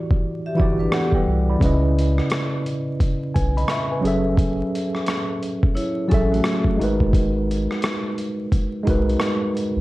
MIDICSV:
0, 0, Header, 1, 5, 480
1, 0, Start_track
1, 0, Key_signature, 4, "minor"
1, 0, Tempo, 689655
1, 1121, Time_signature, 4, 2, 24, 8
1, 6827, End_track
2, 0, Start_track
2, 0, Title_t, "Tine electric piano"
2, 0, Program_c, 0, 4
2, 0, Control_c, 0, 64, 127
2, 0, Note_on_c, 0, 52, 80
2, 0, Note_on_c, 0, 64, 74
2, 0, Note_on_c, 0, 66, 75
2, 0, Note_on_c, 0, 67, 74
2, 0, Note_on_c, 0, 74, 93
2, 382, Note_off_c, 0, 52, 0
2, 382, Note_on_c, 0, 52, 81
2, 392, Note_off_c, 0, 64, 0
2, 392, Note_on_c, 0, 64, 77
2, 403, Note_off_c, 0, 66, 0
2, 403, Note_on_c, 0, 66, 79
2, 415, Note_off_c, 0, 67, 0
2, 415, Note_on_c, 0, 67, 83
2, 429, Note_off_c, 0, 74, 0
2, 429, Note_on_c, 0, 74, 88
2, 654, Note_on_c, 0, 78, 67
2, 655, Note_off_c, 0, 74, 0
2, 656, Note_on_c, 0, 69, 55
2, 793, Note_off_c, 0, 78, 0
2, 794, Note_off_c, 0, 69, 0
2, 798, Note_on_c, 0, 79, 63
2, 802, Note_on_c, 0, 71, 52
2, 923, Note_off_c, 0, 52, 0
2, 929, Note_off_c, 0, 64, 0
2, 934, Note_off_c, 0, 66, 0
2, 940, Note_off_c, 0, 67, 0
2, 1024, Note_off_c, 0, 79, 0
2, 1026, Note_off_c, 0, 71, 0
2, 1041, Note_on_c, 0, 83, 58
2, 1045, Note_on_c, 0, 74, 50
2, 1106, Note_on_c, 0, 49, 81
2, 1116, Note_on_c, 0, 61, 73
2, 1128, Note_on_c, 0, 64, 82
2, 1131, Control_c, 0, 64, 0
2, 1140, Note_on_c, 0, 71, 76
2, 1151, Note_on_c, 0, 75, 93
2, 1234, Control_c, 0, 64, 127
2, 1265, Note_off_c, 0, 83, 0
2, 1268, Note_off_c, 0, 74, 0
2, 1815, Note_off_c, 0, 49, 0
2, 1820, Note_off_c, 0, 61, 0
2, 1826, Note_off_c, 0, 64, 0
2, 1832, Note_off_c, 0, 71, 0
2, 1837, Note_off_c, 0, 75, 0
2, 2328, Note_on_c, 0, 80, 66
2, 2334, Note_on_c, 0, 71, 51
2, 2470, Note_off_c, 0, 80, 0
2, 2473, Note_off_c, 0, 71, 0
2, 2486, Note_on_c, 0, 83, 74
2, 2490, Note_on_c, 0, 75, 59
2, 2563, Note_off_c, 0, 83, 0
2, 2565, Note_off_c, 0, 75, 0
2, 2581, Note_on_c, 0, 85, 71
2, 2587, Note_on_c, 0, 76, 62
2, 2717, Note_off_c, 0, 85, 0
2, 2720, Note_off_c, 0, 76, 0
2, 2725, Note_on_c, 0, 80, 57
2, 2729, Note_on_c, 0, 71, 55
2, 2790, Note_on_c, 0, 54, 85
2, 2800, Note_on_c, 0, 61, 86
2, 2810, Control_c, 0, 64, 0
2, 2814, Note_on_c, 0, 68, 83
2, 2824, Note_on_c, 0, 69, 80
2, 2836, Note_on_c, 0, 76, 89
2, 2918, Control_c, 0, 64, 127
2, 2948, Note_off_c, 0, 80, 0
2, 2950, Note_off_c, 0, 71, 0
2, 3577, Note_off_c, 0, 54, 0
2, 3582, Note_off_c, 0, 61, 0
2, 3588, Note_off_c, 0, 68, 0
2, 3594, Note_off_c, 0, 69, 0
2, 3599, Note_off_c, 0, 76, 0
2, 4230, Note_on_c, 0, 54, 93
2, 4243, Note_on_c, 0, 61, 76
2, 4254, Note_on_c, 0, 68, 75
2, 4264, Note_on_c, 0, 69, 72
2, 4274, Note_on_c, 0, 76, 96
2, 4713, Note_on_c, 0, 56, 93
2, 4715, Note_off_c, 0, 54, 0
2, 4722, Note_off_c, 0, 61, 0
2, 4727, Note_off_c, 0, 68, 0
2, 4727, Note_on_c, 0, 63, 85
2, 4731, Control_c, 0, 64, 0
2, 4732, Note_off_c, 0, 69, 0
2, 4735, Note_on_c, 0, 66, 75
2, 4738, Note_off_c, 0, 76, 0
2, 4748, Note_on_c, 0, 70, 74
2, 4758, Note_on_c, 0, 71, 87
2, 4866, Control_c, 0, 64, 127
2, 5498, Note_off_c, 0, 56, 0
2, 5505, Note_off_c, 0, 63, 0
2, 5509, Note_off_c, 0, 66, 0
2, 5516, Note_off_c, 0, 70, 0
2, 5520, Note_off_c, 0, 71, 0
2, 6146, Note_on_c, 0, 56, 83
2, 6159, Note_on_c, 0, 63, 78
2, 6171, Note_on_c, 0, 66, 72
2, 6181, Note_on_c, 0, 70, 77
2, 6193, Note_on_c, 0, 71, 98
2, 6685, Note_off_c, 0, 56, 0
2, 6692, Note_off_c, 0, 63, 0
2, 6698, Note_off_c, 0, 66, 0
2, 6703, Note_off_c, 0, 70, 0
2, 6709, Note_off_c, 0, 71, 0
2, 6827, End_track
3, 0, Start_track
3, 0, Title_t, "Vibraphone"
3, 0, Program_c, 1, 11
3, 320, Note_on_c, 1, 76, 83
3, 325, Note_on_c, 1, 67, 71
3, 400, Note_off_c, 1, 76, 0
3, 402, Note_off_c, 1, 67, 0
3, 402, Note_on_c, 1, 74, 87
3, 547, Note_off_c, 1, 74, 0
3, 551, Note_on_c, 1, 71, 69
3, 559, Note_on_c, 1, 62, 66
3, 635, Note_off_c, 1, 71, 0
3, 639, Note_off_c, 1, 62, 0
3, 644, Note_on_c, 1, 67, 88
3, 649, Note_on_c, 1, 59, 74
3, 788, Note_off_c, 1, 67, 0
3, 790, Note_off_c, 1, 59, 0
3, 793, Note_on_c, 1, 64, 71
3, 796, Note_on_c, 1, 55, 64
3, 1104, Note_off_c, 1, 64, 0
3, 1105, Note_off_c, 1, 55, 0
3, 4000, Note_on_c, 1, 73, 75
3, 4005, Note_on_c, 1, 64, 76
3, 4228, Note_off_c, 1, 73, 0
3, 4231, Note_off_c, 1, 64, 0
3, 4237, Note_on_c, 1, 69, 78
3, 4245, Note_on_c, 1, 61, 75
3, 4384, Note_off_c, 1, 69, 0
3, 4388, Note_off_c, 1, 61, 0
3, 4394, Note_on_c, 1, 66, 73
3, 4399, Note_on_c, 1, 57, 66
3, 4705, Note_off_c, 1, 66, 0
3, 4707, Note_off_c, 1, 57, 0
3, 6827, End_track
4, 0, Start_track
4, 0, Title_t, "Analog synth bass"
4, 0, Program_c, 2, 38
4, 414, Note_on_c, 2, 31, 88
4, 615, Note_off_c, 2, 31, 0
4, 883, Note_on_c, 2, 36, 81
4, 1089, Note_off_c, 2, 36, 0
4, 1122, Note_on_c, 2, 37, 102
4, 1534, Note_off_c, 2, 37, 0
4, 2337, Note_on_c, 2, 35, 92
4, 2536, Note_off_c, 2, 35, 0
4, 2809, Note_on_c, 2, 30, 94
4, 3219, Note_off_c, 2, 30, 0
4, 4260, Note_on_c, 2, 33, 95
4, 4458, Note_off_c, 2, 33, 0
4, 4723, Note_on_c, 2, 32, 92
4, 5341, Note_off_c, 2, 32, 0
4, 6177, Note_on_c, 2, 35, 101
4, 6377, Note_off_c, 2, 35, 0
4, 6796, Note_on_c, 2, 36, 84
4, 6827, Note_off_c, 2, 36, 0
4, 6827, End_track
5, 0, Start_track
5, 0, Title_t, "Drums"
5, 74, Note_on_c, 9, 36, 101
5, 144, Note_off_c, 9, 36, 0
5, 415, Note_on_c, 9, 36, 93
5, 484, Note_off_c, 9, 36, 0
5, 640, Note_on_c, 9, 37, 100
5, 709, Note_off_c, 9, 37, 0
5, 781, Note_on_c, 9, 36, 81
5, 851, Note_off_c, 9, 36, 0
5, 1122, Note_on_c, 9, 36, 127
5, 1130, Note_on_c, 9, 42, 87
5, 1191, Note_off_c, 9, 36, 0
5, 1200, Note_off_c, 9, 42, 0
5, 1383, Note_on_c, 9, 42, 71
5, 1452, Note_off_c, 9, 42, 0
5, 1518, Note_on_c, 9, 37, 33
5, 1588, Note_off_c, 9, 37, 0
5, 1600, Note_on_c, 9, 42, 82
5, 1612, Note_on_c, 9, 37, 108
5, 1670, Note_off_c, 9, 42, 0
5, 1682, Note_off_c, 9, 37, 0
5, 1853, Note_on_c, 9, 42, 63
5, 1922, Note_off_c, 9, 42, 0
5, 2089, Note_on_c, 9, 36, 105
5, 2091, Note_on_c, 9, 42, 77
5, 2159, Note_off_c, 9, 36, 0
5, 2161, Note_off_c, 9, 42, 0
5, 2337, Note_on_c, 9, 36, 95
5, 2337, Note_on_c, 9, 42, 72
5, 2407, Note_off_c, 9, 36, 0
5, 2407, Note_off_c, 9, 42, 0
5, 2490, Note_on_c, 9, 42, 42
5, 2560, Note_off_c, 9, 42, 0
5, 2562, Note_on_c, 9, 37, 102
5, 2572, Note_on_c, 9, 42, 86
5, 2631, Note_off_c, 9, 37, 0
5, 2642, Note_off_c, 9, 42, 0
5, 2820, Note_on_c, 9, 42, 62
5, 2890, Note_off_c, 9, 42, 0
5, 3044, Note_on_c, 9, 36, 126
5, 3052, Note_on_c, 9, 42, 91
5, 3113, Note_off_c, 9, 36, 0
5, 3121, Note_off_c, 9, 42, 0
5, 3307, Note_on_c, 9, 42, 75
5, 3376, Note_off_c, 9, 42, 0
5, 3443, Note_on_c, 9, 37, 37
5, 3512, Note_off_c, 9, 37, 0
5, 3525, Note_on_c, 9, 42, 90
5, 3537, Note_on_c, 9, 37, 107
5, 3594, Note_off_c, 9, 42, 0
5, 3606, Note_off_c, 9, 37, 0
5, 3777, Note_on_c, 9, 42, 62
5, 3847, Note_off_c, 9, 42, 0
5, 3918, Note_on_c, 9, 36, 111
5, 3988, Note_off_c, 9, 36, 0
5, 4014, Note_on_c, 9, 42, 77
5, 4084, Note_off_c, 9, 42, 0
5, 4254, Note_on_c, 9, 42, 70
5, 4258, Note_on_c, 9, 36, 92
5, 4324, Note_off_c, 9, 42, 0
5, 4327, Note_off_c, 9, 36, 0
5, 4412, Note_on_c, 9, 42, 39
5, 4481, Note_on_c, 9, 37, 106
5, 4482, Note_off_c, 9, 42, 0
5, 4492, Note_on_c, 9, 42, 81
5, 4551, Note_off_c, 9, 37, 0
5, 4562, Note_off_c, 9, 42, 0
5, 4624, Note_on_c, 9, 36, 85
5, 4694, Note_off_c, 9, 36, 0
5, 4743, Note_on_c, 9, 42, 60
5, 4812, Note_off_c, 9, 42, 0
5, 4874, Note_on_c, 9, 36, 78
5, 4944, Note_off_c, 9, 36, 0
5, 4965, Note_on_c, 9, 36, 117
5, 4973, Note_on_c, 9, 42, 87
5, 5034, Note_off_c, 9, 36, 0
5, 5043, Note_off_c, 9, 42, 0
5, 5227, Note_on_c, 9, 42, 64
5, 5297, Note_off_c, 9, 42, 0
5, 5365, Note_on_c, 9, 37, 36
5, 5434, Note_off_c, 9, 37, 0
5, 5444, Note_on_c, 9, 42, 88
5, 5456, Note_on_c, 9, 37, 121
5, 5513, Note_off_c, 9, 42, 0
5, 5525, Note_off_c, 9, 37, 0
5, 5693, Note_on_c, 9, 42, 61
5, 5763, Note_off_c, 9, 42, 0
5, 5930, Note_on_c, 9, 36, 97
5, 5932, Note_on_c, 9, 42, 74
5, 5999, Note_off_c, 9, 36, 0
5, 6002, Note_off_c, 9, 42, 0
5, 6174, Note_on_c, 9, 42, 66
5, 6176, Note_on_c, 9, 36, 92
5, 6244, Note_off_c, 9, 42, 0
5, 6246, Note_off_c, 9, 36, 0
5, 6330, Note_on_c, 9, 42, 36
5, 6400, Note_off_c, 9, 42, 0
5, 6401, Note_on_c, 9, 37, 113
5, 6412, Note_on_c, 9, 42, 80
5, 6470, Note_off_c, 9, 37, 0
5, 6481, Note_off_c, 9, 42, 0
5, 6659, Note_on_c, 9, 42, 64
5, 6729, Note_off_c, 9, 42, 0
5, 6827, End_track
0, 0, End_of_file